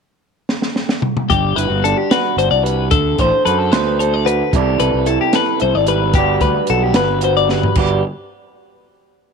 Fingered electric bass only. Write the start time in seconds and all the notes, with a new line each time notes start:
1.30 G1
1.57 G1
1.70 G1
2.37 G1
2.52 C2
2.91 D2
3.19 A1
3.46 F#2
3.73 D2
4.54 C2
4.80 C2
4.94 C2
5.62 C2
5.75 G#1
6.14 G1
6.41 D2
6.70 B1
6.96 G1
7.76 G1